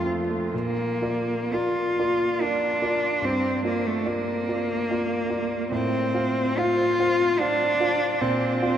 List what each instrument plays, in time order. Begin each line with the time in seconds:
Already playing: grand piano F2 A3
0.06 grand piano C4
0.30 grand piano A3
0.54 grand piano A#2, cello A#3
1.01 grand piano F4 A#4 D5
1.53 cello F4, grand piano F4 A#4 D5
1.99 grand piano F4 A#4 D5
2.41 cello D4, grand piano F4 A#4 D5
2.82 grand piano F4 A#4 D5
3.22 grand piano G2, cello C4
3.65 cello A#3, grand piano F4 D5
3.87 cello A3
4.06 cello A#3, grand piano F4 D5
4.48 grand piano F4 D5
4.91 grand piano F4 D5
5.30 grand piano F4 D5
5.72 grand piano A2, cello C4
6.14 grand piano F4 C5 F5
6.57 grand piano F4 C5 F5, cello F4
7.00 grand piano F4 C5 F5
7.39 cello D4, grand piano F4 C5 F5
7.80 grand piano F4 C5 F5
8.21 grand piano A#2, cello C4
8.62 grand piano F4 D5 F5